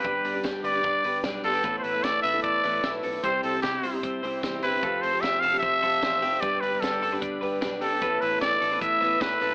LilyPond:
<<
  \new Staff \with { instrumentName = "Trumpet" } { \time 4/4 \key a \minor \tempo 4 = 151 b'4 r8 d''4. r8 a'8~ | a'16. c''32 b'8 d''8 e''8 d''4~ d''16. r8 r32 | c''8 a'8 g'4 r4. b'8~ | b'8 c''8 e''8 f''8 e''2 |
d''8 b'8 a'4 r4. a'8~ | a'8 b'8 d''4 e''4 b'4 | }
  \new Staff \with { instrumentName = "Clean electric guitar" } { \time 4/4 \key a \minor <g b'>8 d'8 g'8 b'8 d'8 b'8 d'8 f'16 g'16 | <a, b'>8 e'8 a'8 b'8 e'8 b'8 e'8 a'8 | <c c''>8 c'8 e'8 c''8 c'8 c''8 c'8 e'8 | <f a'>8 c'8 g'8 a'8 c'8 a'8 c'8 g'8 |
<g b'>8 d'8 f'16 g'16 a'16 b'16 d'8 b'8 d'8 g'8 | <a, b'>8 e'8 a'8 a'16 b'16 e'8 b'8 e'8 a'8 | }
  \new Staff \with { instrumentName = "Steel-string acoustic guitar" } { \time 4/4 \key a \minor <g b d' g'>8. <b d' g'>4 <b d' g'>8. <g b d' g'>8 <g b d' g'>8 <g b d' g'>8 | <a b e' a'>8. <b e' a'>4 <b e' a'>8. <a b e' a'>8 <a b e' a'>8 <a b e' a'>8 | <c g c' e' g'>8. <c' e' g'>4 <c' e' g'>8. <g c' e' g'>8 <g c' e' g'>8 <g c' e' g'>8 | <f a c' g'>8. <a c' g'>4 <a c' g'>8. <f a c' g'>8 <f a c' g'>8 <f a c' g'>8 |
<g b d' g'>8. <b d' g'>4 <b d' g'>8. <g b d' g'>8 <g b d' g'>8 <g b d' g'>8 | <a b e' a'>8. <b e' a'>4 <b e' a'>8. <a b e' a'>8 <a b e' a'>8 <a b e' a'>8 | }
  \new Staff \with { instrumentName = "Fingered electric bass" } { \clef bass \time 4/4 \key a \minor g,,8 g,,8 g,,8 g,,8 g,,8 g,,8 b,,8 g,,8 | a,,8 a,,8 a,,8 a,,8 a,,8 a,,8 b,,8 b,,8 | c,8 c,8 c,8 c,8 c,8 c,8 e,8 g,,8 | f,,8 f,,8 f,,8 f,,8 f,,8 f,,8 a,,8 f,,8 |
g,,8 g,,8 g,,8 g,,8 g,,8 g,,8 b,,8 g,,8 | a,,8 a,,8 a,,8 a,,8 a,,8 a,,8 b,,8 b,,8 | }
  \new DrumStaff \with { instrumentName = "Drums" } \drummode { \time 4/4 <hh bd>8 hho8 <hh bd sn>8 hho8 <hh bd>8 hho8 <hh bd sn>8 hho8 | <hh bd>8 hho8 <hh bd sn>8 hho8 <hh bd>8 hho8 <hh bd sn>8 hho8 | <hh bd>8 hho8 <hh bd sn>8 hho8 <hh bd>8 hho8 <hh bd sn>8 hho8 | <hh bd>8 hho8 <hh bd sn>8 hho8 <hh bd>8 hho8 <hh bd sn>8 hho8 |
<hh bd>8 hho8 <hh bd sn>8 hho8 <hh bd>8 hho8 <hh bd sn>8 hho8 | <hh bd>8 hho8 <hh bd sn>8 hho8 <hh bd>8 hho8 <hh bd sn>8 hho8 | }
>>